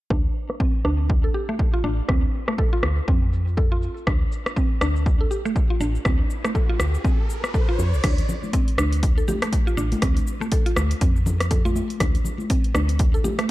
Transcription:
0.10 D2 D4, kick, cross-stick
0.36 shaker
0.50 cross-stick
0.60 C4, kick
0.85 D2 D4, cross-stick
1.10 kick
1.24 A4
1.34 G4
1.49 A3
1.59 kick
1.74 F4
1.84 A1 D4, shaker
1.99 shaker
2.09 D2 C4, kick, cross-stick
2.34 shaker
2.48 A3, cross-stick, shaker
2.58 A4, kick
2.73 F4
2.83 D2, cross-stick, shaker
2.98 shaker
3.08 F2 C4, kick
3.33 shaker
3.48 shaker
3.57 A4, kick, shaker
3.72 F4
3.82 shaker
3.97 shaker
4.07 D2 D4, kick, cross-stick, riser, shaker
4.32 shaker
4.46 cross-stick, shaker
4.57 C4, kick, shaker
4.81 D2 D4, cross-stick, shaker
4.96 shaker
5.06 kick, shaker
5.21 A4
5.31 G4, shaker
5.45 A3, shaker
5.56 kick, shaker
5.70 F4
5.80 A1 D4, shaker
5.95 shaker
6.05 D2 C4, kick, cross-stick, shaker
6.30 shaker
6.44 A3, cross-stick, shaker
6.55 A4, kick, shaker
6.69 F4
6.80 D2, cross-stick, shaker
6.95 shaker
7.04 C4, kick, shaker
7.30 shaker
7.44 cross-stick, shaker
7.54 A4, kick, shaker
7.69 F4
7.79 F2, shaker
7.94 C2, shaker
8.04 D2 D4, kick, cross-stick, closed hi-hat, crash, low conga, shaker
8.18 closed hi-hat, shaker
8.29 low conga, shaker
8.43 high conga, shaker
8.53 C4, kick, closed hi-hat, shaker
8.68 closed hi-hat
8.78 D2 D4, cross-stick, high conga, shaker
8.93 closed hi-hat, shaker
9.03 kick, closed hi-hat, shaker
9.18 A4, shaker
9.28 G4, high conga, low conga, shaker
9.42 A3, cross-stick, closed hi-hat, high conga, shaker
9.53 kick, closed hi-hat, shaker
9.67 F4, shaker
9.77 A1 D4, shaker
9.92 closed hi-hat, high conga, shaker
10.02 D2 C4, kick, cross-stick, closed hi-hat, low conga, shaker
10.17 closed hi-hat, shaker
10.27 shaker
10.40 A3, high conga, shaker
10.52 A4, kick, closed hi-hat, shaker
10.66 F4, closed hi-hat
10.76 D2, cross-stick, high conga, shaker
10.91 closed hi-hat, shaker
11.01 F2 C4, kick, closed hi-hat, shaker
11.16 shaker
11.26 low conga, shaker
11.40 cross-stick, closed hi-hat, shaker
11.51 A4, kick, closed hi-hat, low conga, shaker
11.65 F4, high conga, shaker
11.76 high conga, shaker
11.90 closed hi-hat, shaker
12.00 D2 D4, kick, cross-stick, closed hi-hat, low conga, shaker
12.15 closed hi-hat, shaker
12.25 low conga, shaker
12.38 high conga, shaker
12.50 C4, kick, closed hi-hat, shaker
12.64 closed hi-hat
12.75 D2 D4, cross-stick, high conga, shaker
12.89 closed hi-hat, shaker
12.99 kick, closed hi-hat, shaker
13.14 A4, shaker
13.24 G4, high conga, low conga, shaker
13.39 A3, cross-stick, closed hi-hat, high conga, shaker

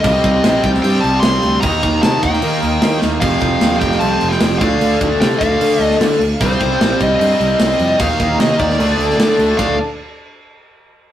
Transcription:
Already playing: F5
0.00 C3 D#5
0.04 C2 G3 C4 G4, kick, crash
0.24 C2, kick, crash
0.44 A#1, snare, crash
0.63 C2 G5, kick, crash
0.74 snare
0.82 G2 G5, crash
1.01 C2 A5, crash
1.20 C2 C6, snare, crash
1.43 D2, crash
1.61 D#2 D#3 A#3 D#4 A#4 F5 A#5, kick, crash
1.65 D#4
1.83 D#2, kick, crash
2.02 C3 A5, snare, crash
2.22 D#2 G5, kick, crash
2.33 snare
2.42 D#3, crash
2.62 D#2, crash
2.82 D#3, snare, crash
3.02 D#2, snare
3.20 F1 F2 C3 F3 F4 C5 F5 G5, kick, crash
3.41 F1, kick, crash
3.61 D#2, snare, crash
3.80 F1 G5, kick, crash
3.91 snare
3.99 C2 A5, crash
4.21 F1, crash
4.29 G5, snare
4.40 F1, snare, crash
4.58 D2 D3 A3 F5, kick, crash
4.63 D4 A4 F5
4.81 D2, crash
5.01 D2, kick, crash
5.21 C3 G5, snare, crash
5.39 D2 F5, kick, crash
5.61 D3, crash
5.80 D2 D#5, crash
5.91 snare
6.01 D3, snare, crash
6.19 D2, crash
6.41 C2 C3 G3 C4 G4 C5, kick, crash
6.61 C2, kick, crash
6.81 A#1, snare, crash
7.01 C2 D#5, kick, crash
7.20 G2 D#5, crash
7.40 C2, crash
7.60 C2, snare, crash
7.79 F2, crash
7.99 D#2 D#3 A#3 D#4 A#4 F5, kick, crash
8.20 D#2, kick, crash
8.38 C3 D#5, snare, crash
8.59 D#2 D5, kick, crash
8.70 snare
8.79 D2 D3 A3 D4 A4 D5, crash
8.98 D2, crash
9.10 snare
9.18 D3, snare, crash
9.39 D2, crash
9.58 D2 D3 A3 D4 A4 F5, kick, crash
9.62 D4 D5

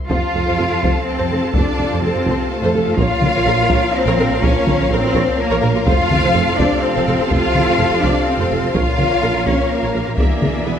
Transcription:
0.09 F1 F2 C3 F3 C4 F4 A4 C5 F5 A5, taiko
0.33 F1 F2 F4 A4
0.45 F2 A4 C5
0.57 F1 F2 A4
0.70 F2 F4 A4
0.81 F1 F2 A4 C5, taiko
1.06 C4 C5
1.17 F2 A4 C5
1.29 F1 F2 A4
1.42 F2 F4 A4
1.53 F1 F2 D4 A4 C5 D5, taiko
1.78 F1 F2 F4 A4
1.90 F2 A4 C5
2.01 F1 F2 C4 C5
2.06 A4
2.13 F2 F4 A4
2.25 F1 F2, taiko
2.29 A4 C5
2.49 A3 A4
2.61 F2 A4 C5
2.73 F1 F2 A4
2.85 F2 F4 A4
2.96 A#1 A#2 F3 A#3 F4 A#4 C#5 F5, taiko
3.21 A#1 F4 A#4, taiko mid
3.33 A#1 A#4 C#5
3.45 A#1 A#4
3.57 A#1
3.61 F4 A#4
3.68 A#1 A#4, taiko
3.73 C#5
3.95 C4 C5
4.05 A#1 A#4 C#5
4.17 A#1 A#4
4.31 A#1 F4 A#4
4.42 A#1 C#4 A#4 C#5, taiko
4.66 A#1 F4 A#4, taiko mid
4.78 A#1 A#4 C#5
4.90 A#1 C4 A#4 C5
5.02 A#1 F4 A#4
5.14 A#1 A#4 C#5, taiko
5.38 A#3 A#4
5.50 A#1 A#4 C#5
5.62 A#1 A#4
5.74 A#1 F4 A#4
5.86 F1 F2 C3 F3 C4 F4 A4 C5 F5, taiko
6.10 F1 F4 A4, taiko mid
6.23 F1 A4 C5
6.34 F1 A4
6.46 F1 F4 A4
6.58 F1 D4 A4 C5 D5, taiko
6.82 C4 C5
6.95 F1 A4 C5
7.07 F1 A4
7.19 F1 F4 A4
7.30 F1 F4 A4 C5 F5, taiko
7.54 F1 F4 A4, taiko mid
7.66 F1 A4 C5
7.78 F1 A4
7.90 F1 F4 A4
8.02 F1 D4 A4 C5 D5, taiko
8.27 C4 C5
8.38 F1 A4 C5
8.50 F1 A4
8.63 F1 F4 A4
8.74 A#1 A#2 F3 C#4 F4 A#4 C#5 F5, taiko
8.97 A#1 F4 A#4, taiko mid
9.09 A#1 A#4 C#5
9.22 A#1 A#4
9.34 A#1 F4 A#4
9.45 A#1 C#4 A#4 C#5, taiko
9.70 A#3 A#4
9.83 A#1 A#4 C#5
9.94 A#1 A#4
10.07 A#1 F4 A#4
10.18 E1 E2 B2 E3 A#3 D4 G#4 A#4 D5 E5, taiko
10.22 D5
10.41 E1 E2 G#4, taiko mid
10.54 E2 G#4 D5
10.66 E1 E2 B3 G#4 B4

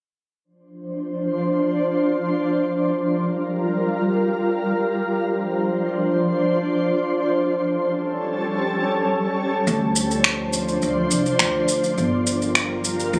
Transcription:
0.44 F3 D4 C5
2.74 G3 F4 A#4
5.05 F3 D4 C5
7.37 G3 C#4 A4
9.66 D2 F3 D4 C5, shaker
9.96 shaker
10.11 shaker
10.24 finger snap, shaker
10.53 shaker
10.68 shaker
10.82 D2, shaker
11.11 C2, shaker
11.26 shaker
11.39 D2, finger snap, shaker
11.68 shaker
11.84 shaker
11.98 G1 G3 F4 A#4, shaker
12.27 shaker
12.42 shaker
12.55 finger snap, shaker
12.84 shaker
13.00 shaker
13.13 D2, shaker

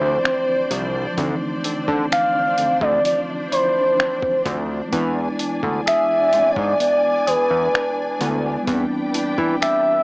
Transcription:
Already playing: D3 E3 F3 A3 C4 D4 E4 C5 D5
0.01 D2
0.24 C4, finger snap
0.71 C2 F3, closed hi-hat
1.14 F3 A3
1.18 D2 D3 C4, kick, closed hi-hat
1.22 D#4
1.29 E3
1.64 D3 C4, closed hi-hat
1.88 D3, kick
2.12 F5, finger snap, closed hi-hat
2.58 D2 C4, closed hi-hat
2.81 D2 D5, kick
3.05 F3 D5, closed hi-hat
3.52 E4 C5, closed hi-hat
3.99 C4, finger snap
4.23 kick
4.46 D2 F3, kick, closed hi-hat
4.88 G#3 B3
4.93 E2 E3 D4 D5 G#5, kick, closed hi-hat
4.97 E4
5.39 D4, closed hi-hat
5.63 D2, kick
5.86 G#4 E5, finger snap, closed hi-hat
6.33 G#2 C4, closed hi-hat
6.51 C#5
6.56 G#2 D4 D5, kick
6.80 B3 D5, closed hi-hat
7.27 E2 G#4 B4, closed hi-hat
7.51 E2
7.74 D4, finger snap
8.19 D2 G#3 B3 D4, closed hi-hat
8.23 E4
8.63 G3 B3
8.67 E2 E3 C4 D4 B4 D5 G5, kick, closed hi-hat
8.72 C#4
8.78 D4
9.14 E3 D4, closed hi-hat
9.38 E3, kick
9.61 G4 E5, finger snap, closed hi-hat

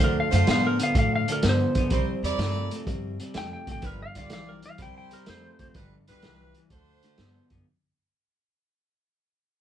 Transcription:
Already playing: D4
0.00 D2 D3 A3 F#4 A#4 C5
0.20 F5
0.31 F#2 D3 A3 D4 F#4 C5, closed hi-hat
0.35 F5
0.47 A2 D3 B3 F5, snare, closed hi-hat
0.67 A#4
0.79 D3 B3 F5, closed hi-hat
0.95 A2 D3 A3 F5, kick, closed hi-hat
1.16 F5
1.28 D3 A3, closed hi-hat
1.32 A#4
1.43 G2 D3 B3, snare, closed hi-hat
1.49 C5
1.75 B1 D3 B3, kick, closed hi-hat
1.90 C2 C3 G3 E4 A#4 C5, kick, closed hi-hat
2.23 E2 C3 G3 E4 A#4 D5, closed hi-hat
2.38 G2 C3 A3, snare, closed hi-hat
2.71 C3 A3, closed hi-hat
2.87 G2 C3 G3, kick, closed hi-hat
3.20 C3 G3, closed hi-hat
3.34 F2 C3 A3 G5, snare, closed hi-hat
3.53 G5
3.67 A1 C3 A3, kick, closed hi-hat
3.72 G5
3.82 G1 G2 D3 F4 G4 B4, kick, closed hi-hat
3.86 A#4
4.02 F5
4.15 B1 G2 D3 F4 G4 D5 F5, closed hi-hat
4.30 B1 G2 E3 F5, snare, closed hi-hat
4.49 A#4
4.62 G2 E3 F5, closed hi-hat
4.78 C2 C3 G3 E4 A#4 C5, kick, closed hi-hat
4.82 G5
4.98 G5
5.11 C3 G3 A#4, closed hi-hat
5.26 F2 C3 A3 C5, snare, closed hi-hat
5.59 E2 C3 A3, kick, closed hi-hat
5.74 G1 G2 D3 F4 G4 B4, kick, closed hi-hat
6.08 B1 G2 D3 F4 G4 B4, closed hi-hat
6.22 C2 G2 E3, snare, closed hi-hat
6.54 G2 E3, closed hi-hat
6.70 D2 D3 A3 D4 F#4 C5, kick, closed hi-hat
7.03 D3 A3, closed hi-hat
7.18 G2 D3 B3, snare, closed hi-hat
7.50 F#2 D3 B3, kick, closed hi-hat

